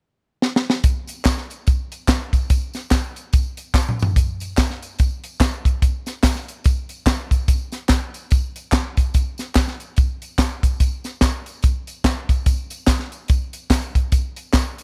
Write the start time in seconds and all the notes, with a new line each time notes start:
0.42 snare
0.56 snare
0.70 snare
0.84 kick, closed hi-hat, tambourine
1.07 closed hi-hat, tambourine
1.25 kick, snare, clap, closed hi-hat, tambourine
1.38 snare
1.50 closed hi-hat, tambourine
1.67 kick, closed hi-hat, tambourine
1.92 closed hi-hat, tambourine
2.08 kick, snare, clap, closed hi-hat, tambourine
2.33 kick, closed hi-hat, tambourine
2.50 kick, closed hi-hat, tambourine
2.74 snare, closed hi-hat, tambourine
2.91 kick, snare, clap, closed hi-hat, tambourine
3.16 closed hi-hat, tambourine
3.33 kick, closed hi-hat, tambourine
3.57 closed hi-hat, tambourine
3.74 kick, snare, clap, tambourine
3.89 mid tom
3.99 floor tom, tambourine
4.16 kick, closed hi-hat, tambourine
4.40 closed hi-hat, tambourine
4.57 kick, snare, clap, closed hi-hat, tambourine
4.70 snare
4.83 closed hi-hat, tambourine
4.99 kick, closed hi-hat, tambourine
5.24 closed hi-hat, tambourine
5.40 kick, snare, clap, closed hi-hat, tambourine
5.65 kick, closed hi-hat, tambourine
5.82 kick, closed hi-hat, tambourine
6.06 snare, closed hi-hat, tambourine
6.23 kick, snare, clap, closed hi-hat, tambourine
6.35 snare
6.48 closed hi-hat, tambourine
6.64 kick, closed hi-hat, tambourine
6.89 closed hi-hat, tambourine
7.06 kick, snare, clap, closed hi-hat, tambourine
7.31 kick, closed hi-hat, tambourine
7.48 kick, closed hi-hat, tambourine
7.72 snare, closed hi-hat, tambourine
7.89 kick, snare, clap, closed hi-hat, tambourine
8.14 closed hi-hat, tambourine
8.31 kick, closed hi-hat, tambourine
8.56 closed hi-hat, tambourine
8.72 kick, snare, clap, closed hi-hat, tambourine
8.97 kick, closed hi-hat, tambourine
9.14 kick, closed hi-hat, tambourine
9.38 snare, closed hi-hat, tambourine
9.55 kick, snare, clap, closed hi-hat, tambourine
9.68 snare
9.80 closed hi-hat, tambourine
9.97 kick, closed hi-hat, tambourine
10.22 closed hi-hat, tambourine
10.38 kick, snare, clap, closed hi-hat, tambourine
10.63 kick, closed hi-hat, tambourine
10.80 kick, closed hi-hat, tambourine
11.04 snare, closed hi-hat, tambourine
11.21 kick, snare, clap, closed hi-hat, tambourine
11.46 closed hi-hat, tambourine
11.63 kick, closed hi-hat, tambourine
11.87 closed hi-hat, tambourine
12.04 kick, snare, clap, closed hi-hat, tambourine
12.29 kick, closed hi-hat, tambourine
12.46 kick, closed hi-hat, tambourine
12.70 closed hi-hat, tambourine
12.87 kick, snare, clap, closed hi-hat, tambourine
12.99 snare
13.12 closed hi-hat, tambourine
13.28 kick, closed hi-hat, tambourine
13.53 closed hi-hat, tambourine
13.70 kick, snare, clap, closed hi-hat, tambourine
13.95 kick, closed hi-hat, tambourine
14.12 kick, closed hi-hat, tambourine
14.36 closed hi-hat, tambourine
14.53 kick, snare, clap, closed hi-hat, tambourine
14.78 closed hi-hat, tambourine